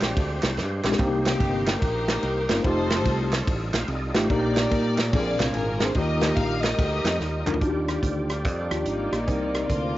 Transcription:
Already playing: G#3 C4 D4 F4 G4 C5
0.01 A#1, snare, clap, ride
0.17 D2, kick, ride
0.43 C2, snare, clap, ride
0.58 G2, snare
0.84 A#1 G#3 C4 D4 G4, snare, clap
0.92 snare
0.97 C2 C3 A#3 C4 D4 G4 C5, kick, ride
1.02 D#4
1.26 A#3 D#4 G4, snare, clap, ride
1.40 G1, kick, ride
1.67 snare, clap, ride
1.80 A#1 D#4 G4 A#4, kick, ride
2.08 snare, clap, ride
2.23 C2, ride
2.47 G1 A#3 C4 D#4 F4 A#4, snare, clap, ride
2.63 F1 G3 A3 D#4 F4 G4 A4 C5, kick, ride
2.90 snare, clap, ride
3.05 C2, kick, ride
3.32 snare, clap, ride
3.47 A1, kick, ride
3.73 A#1 C5 F5, snare, clap, ride
3.88 C2 A4 D#5, ride
4.14 A1 A3 D#4 F4 G4 C5, snare, clap, ride
4.29 A#1 A#2 G3 A#3 D#4 G4 A#4 D5, kick, ride
4.56 snare, clap, ride
4.71 A#2, kick, ride
4.98 snare, clap, ride
5.13 A#1 A#2 G#3 C4 D4 F4 G#4 A4 A#4 D5, kick, ride
5.20 A#4
5.40 C2, snare, clap, ride
5.54 G#1 A#4, ride
5.80 C4 D4 G#4 A#4 C5, snare, clap, ride
5.95 D#2 D#3 G3 A#3 D#4 F4 G4 A#4 C5 D#5, kick, ride
6.01 D#5
6.21 snare, clap, ride
6.37 A#1 F5, kick, ride
6.63 G4 A#4 D#5, snare, clap, ride
6.78 D2, kick, ride
7.04 F2, snare, clap, ride
7.20 D#2, snare
7.46 D2 D4 D#4 F4 A#4, clap, mid tom
7.54 floor tom
7.60 D#2 D#3 G3 A#3 D4 D#4 F4 F#4 G4 D5, kick, closed hi-hat
7.68 G4
7.88 cross-stick, closed hi-hat
8.03 D2, kick, closed hi-hat
8.29 cross-stick, closed hi-hat
8.45 F2 F3 G3 D4, kick, closed hi-hat
8.71 D#2 D4 D#4 F4 G4, cross-stick, closed hi-hat
8.85 G#1 G3 A#3 D#4, closed hi-hat
9.12 A#1, cross-stick, closed hi-hat
9.27 C2 C3 C4 D#4 G#4 A#4 C5 D5, kick, closed hi-hat
9.32 A#4
9.54 cross-stick, closed hi-hat
9.68 D2 A#3 D4 F4, kick, closed hi-hat

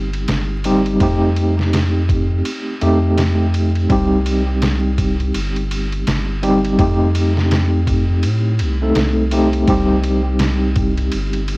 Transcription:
Already playing: G1 G3 C4 D#4 G4
0.13 ride
0.28 G1, snare, ride
0.64 G3 C4 D#4 G4, ride
0.86 ride
1.00 F2 A3 C4 D#4 G4, kick, ride
1.36 ride
1.59 snare
1.73 snare, ride
2.09 kick, ride
2.45 ride
2.81 F2 A3 C4 D#4 G4, ride
3.18 snare, ride
3.54 ride
3.75 ride
3.89 C2 G3 C4 D#4 G4, kick, ride
4.26 ride
4.62 snare, ride
4.98 kick, ride
5.20 ride
5.34 G1, ride
5.56 ride
5.71 ride
5.92 ride
6.07 G1, snare, ride
6.43 G3 C4 D#4 G4, ride
6.65 ride
6.78 F2 A3 C4 D#4 G4, kick, ride
7.15 ride
7.37 snare
7.51 snare, ride
7.87 kick, ride
8.23 A2, ride
8.59 C2, ride
8.82 A3 C4 D#4 A4
8.95 C2, snare, ride
9.31 A3 C4 D#4 G4, ride
9.53 ride
9.67 C2 G3 C4 D#4 G4, kick, ride
10.04 ride
10.39 snare, ride
10.76 kick, ride
10.97 ride
11.12 G1, ride
11.33 ride
11.48 ride

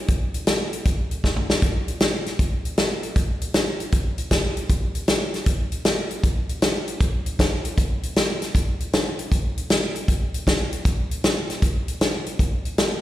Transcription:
0.08 kick, closed hi-hat
0.34 closed hi-hat
0.47 snare, closed hi-hat
0.73 closed hi-hat
0.85 kick, closed hi-hat
1.11 closed hi-hat
1.24 kick, snare
1.36 mid tom
1.50 snare
1.62 kick, closed hi-hat
1.88 closed hi-hat
2.00 snare, closed hi-hat
2.26 snare, closed hi-hat
2.39 kick, closed hi-hat
2.65 closed hi-hat
2.77 snare, closed hi-hat
3.03 closed hi-hat
3.16 kick, closed hi-hat
3.41 closed hi-hat
3.54 snare, closed hi-hat
3.80 closed hi-hat
3.92 kick, closed hi-hat
4.18 closed hi-hat
4.31 kick, snare, closed hi-hat
4.57 closed hi-hat
4.69 kick, closed hi-hat
4.95 closed hi-hat
5.08 snare, closed hi-hat
5.34 snare, closed hi-hat
5.46 kick, closed hi-hat
5.72 closed hi-hat
5.85 snare, closed hi-hat
6.10 closed hi-hat
6.24 kick, closed hi-hat
6.49 closed hi-hat
6.62 snare, closed hi-hat
6.87 closed hi-hat
7.01 kick, closed hi-hat
7.26 closed hi-hat
7.39 kick, snare, closed hi-hat
7.65 closed hi-hat
7.78 kick, closed hi-hat
8.03 closed hi-hat
8.16 snare, closed hi-hat
8.42 snare, closed hi-hat
8.55 kick, closed hi-hat
8.80 closed hi-hat
8.93 snare, closed hi-hat
9.19 closed hi-hat
9.32 kick, closed hi-hat
9.57 closed hi-hat
9.70 snare, closed hi-hat
9.95 closed hi-hat
10.08 kick, closed hi-hat
10.34 closed hi-hat
10.47 kick, snare, closed hi-hat
10.72 closed hi-hat
10.85 kick, closed hi-hat
11.11 closed hi-hat
11.24 snare, closed hi-hat
11.50 snare, closed hi-hat
11.62 kick, closed hi-hat
11.88 closed hi-hat
12.01 snare, closed hi-hat
12.26 closed hi-hat
12.39 kick, closed hi-hat
12.65 closed hi-hat
12.78 snare, closed hi-hat

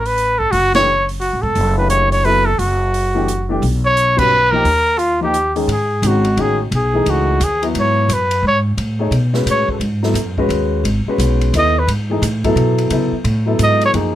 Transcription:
Already playing: A1
0.06 B4, open hi-hat
0.18 open hi-hat
0.39 A4, kick
0.51 F#1 F#4, open hi-hat
0.74 E3 A3 D4 G4 C#5, snare, ride
1.09 open hi-hat
1.20 F#4, open hi-hat
1.33 A1
1.42 E1 A4, kick
1.55 F#1, open hi-hat
1.77 E3 A3 D4 G4 B4
1.90 C#5, closed hi-hat
2.12 C#5, open hi-hat
2.24 F#3 B3 E4 A4 B4, open hi-hat
2.46 A4
2.59 F#1 F#4, open hi-hat
2.94 open hi-hat
3.15 E3 A3 D4 G4
3.28 closed hi-hat
3.49 E3 A3 D4 G4
3.62 B1, open hi-hat
3.86 C#5
3.97 closed hi-hat
4.17 G3 C#4 F#4 B4, kick, crash
4.51 F3 A#3 D#4 G4 A#4
4.64 D#2, open hi-hat
4.98 F4, open hi-hat
5.21 F3 A#3 D#4 G4
5.34 closed hi-hat
5.56 D#3 G#3 C#4 G#4, open hi-hat
5.67 G#2, ride
5.72 G#4
6.02 G#1 D#3 G#3 C#4 F#4, hi-hat pedal, ride
6.07 F#4
6.25 ride
6.37 A1 D#3 G#3 C#4 F#4, ride
6.41 G#4
6.71 B1, ride
6.76 G#4
6.93 E3 A3 D#4 G#4
7.06 C#2, ride
7.10 F#4
7.40 D#2 G#4, hi-hat pedal, ride
7.62 F#3 B3 E4 F#4, ride
7.74 G#2, ride
7.80 C#5
8.09 F#2, hi-hat pedal, ride
8.13 B4
8.31 ride
8.43 G#2
8.47 C#5
8.77 A2, ride
8.99 A3 D#4 G#4 C#5
9.11 B2, ride
9.33 G#3 C#4 F#4 B4, snare
9.46 A2, hi-hat pedal, ride
9.51 C#5
9.68 A4, muted upright bass stroke, kick
9.80 G#2, ride
10.03 F#3 B3 E4 A4, snare
10.14 F#2, hi-hat pedal, ride
10.38 G#3 C#4 F#4 B4, kick
10.49 D#2, ride
10.84 G#1, ride
11.06 G#3 C#4 F#4 B4, muted upright bass stroke
11.18 B1, hi-hat pedal, ride
11.41 ride
11.53 D#2 B3 E4 A4 D#5, hi-hat pedal, ride
11.58 D#5
11.79 B4
11.87 G#2, ride
12.09 E3 A3 D#4 G#4
12.22 A2, hi-hat pedal, ride
12.44 F#3 B3 E4 A4, kick, ride
12.55 B2, ride
12.78 ride
12.90 C#3 F#3 B3 E4 A4, ride
13.12 muted upright bass stroke
13.24 A2, ride
13.46 F#3 B3 E4 A4
13.59 G#2, hi-hat pedal, ride
13.63 D#5
13.81 C#5, ride
13.93 F#2 F3 A#3 D#4 G#4, ride

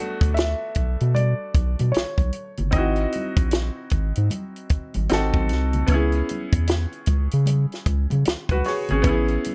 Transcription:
Already playing: A3 B3 D4 F#4 F#5
0.21 D2, kick, closed hi-hat
0.34 E5, closed hi-hat
0.39 snare
0.75 B1, kick, closed hi-hat, muted conga
1.00 B2, closed hi-hat
1.15 D5, closed hi-hat, muted conga, high conga
1.55 B1, kick, closed hi-hat, muted conga
1.79 B2, closed hi-hat, high conga
1.92 C#5, closed hi-hat, muted conga
1.96 B1, snare
2.18 B1, kick, closed hi-hat, high conga
2.33 closed hi-hat
2.57 G1, closed hi-hat, low conga
2.71 G#1 C4 D#4 D#5, kick, closed hi-hat, low conga
2.76 E4 F#4
2.96 closed hi-hat
3.12 closed hi-hat, muted conga, high conga
3.37 A#1, kick, closed hi-hat
3.51 snare, closed hi-hat, muted conga
3.90 G#1, kick, closed hi-hat
4.15 G#2, closed hi-hat
4.30 closed hi-hat, muted conga, high conga
4.56 closed hi-hat
4.69 G#1, kick, closed hi-hat
4.94 G#1, closed hi-hat, high conga
5.09 G#1 C4 D#4 F#4 A4, snare, closed hi-hat, muted conga
5.34 A1, kick, high conga
5.49 C2, snare, closed hi-hat, muted conga
5.73 closed hi-hat, low conga
5.87 C#2 B3 C#4, kick, closed hi-hat, low conga
5.92 E4 G#4
6.12 closed hi-hat
6.29 closed hi-hat, high conga
6.53 E2, kick, closed hi-hat
6.67 snare, closed hi-hat
6.92 closed hi-hat
7.06 C#2, kick, closed hi-hat, muted conga
7.31 C#3, closed hi-hat
7.46 closed hi-hat, muted conga, high conga
7.72 snare, closed hi-hat
7.86 C#2, kick, closed hi-hat
8.10 C#3, closed hi-hat, high conga
8.25 C#2, snare, closed hi-hat, muted conga
8.49 C#2 F#4 B4, kick, closed hi-hat, high conga
8.64 G#4 C#5, snare, open hi-hat, muted conga
8.89 G#1 C#4 G#4, closed hi-hat, low conga
9.02 A1 B3 C#4, kick, closed hi-hat, low conga
9.07 E4 G#4
9.28 closed hi-hat
9.44 closed hi-hat, muted conga, high conga

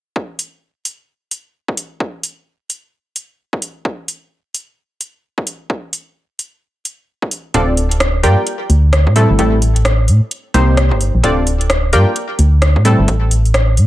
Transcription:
0.16 kick
0.39 open hi-hat
0.85 open hi-hat
1.31 open hi-hat
1.68 kick
1.77 open hi-hat
2.00 kick
2.23 open hi-hat
2.70 open hi-hat
3.16 open hi-hat
3.53 kick
3.62 open hi-hat
3.85 kick
4.08 open hi-hat
4.54 open hi-hat
5.01 open hi-hat
5.38 kick
5.47 open hi-hat
5.70 kick
5.93 open hi-hat
6.39 open hi-hat
6.85 open hi-hat
7.22 kick
7.31 open hi-hat
7.54 D1 C4 D4 F4 A4 D5, kick, closed hi-hat
7.77 open hi-hat
7.91 closed hi-hat
8.00 cross-stick, closed hi-hat
8.23 G2 F4 G4 A#4 D5 G5, open hi-hat
8.47 closed hi-hat
8.70 D2, open hi-hat
8.93 cross-stick, closed hi-hat
9.07 A2, kick
9.16 G3 A3 C4 E4 A4, open hi-hat
9.30 G1
9.39 A1 G3 A3 C4 E4 A4, kick, closed hi-hat
9.62 open hi-hat
9.76 closed hi-hat
9.85 cross-stick, closed hi-hat
10.08 A2, open hi-hat
10.31 closed hi-hat
10.54 C2 A#3 C4 D#4 G4 C5, open hi-hat
10.77 cross-stick, closed hi-hat
10.91 G1, kick
11.01 open hi-hat
11.15 A#1
11.23 C4 D4 F4 A4 D5, kick, closed hi-hat
11.47 open hi-hat
11.61 closed hi-hat
11.70 cross-stick, closed hi-hat
11.93 G2 F4 G4 A#4 D5 G5, open hi-hat
12.16 closed hi-hat
12.39 D2, open hi-hat
12.62 cross-stick, closed hi-hat
12.76 A2, kick
12.85 G3 A3 C4 E4 A4, open hi-hat
12.99 G1
13.08 A1, kick, closed hi-hat
13.31 open hi-hat
13.45 open hi-hat
13.54 cross-stick, closed hi-hat
13.77 A2, open hi-hat

